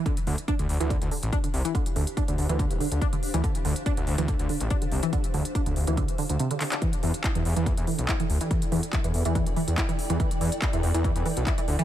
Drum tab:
HH |xxoxxxoxxxoxxxox|xxoxxxoxxxoxxxox|xxoxxxoxxxoxxxox|xxoxxxoxxxoxxxox|
CP |----------------|----------------|----------------|--------------xx|
BD |o---o---o---o---|o---o---o---o---|o---o---o---o---|o---o---o-------|

HH |xxoxxxoxxxoxxxox|xxoxxxoxxxoxxxox|xxoxxxoxxxoxxxox|
CP |----x-------x---|----x-------x---|----x-------x---|
BD |o---o---o---o---|o---o---o---o---|o---o---o---o---|